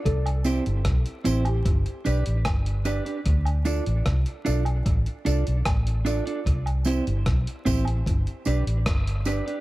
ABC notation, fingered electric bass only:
X:1
M:4/4
L:1/16
Q:1/4=75
K:Ddor
V:1 name="Fingered electric bass" clef=bass
C,,3 G,,, B,,, z A,,,2 G,,, z B,,, A,,, G,,,3 z | D,,3 A,,, C,, z B,,,2 A,,, z C,, B,,, A,,,3 z | C,,3 G,,, B,,, z A,,,2 G,,, z B,,, A,,, G,,,3 z |]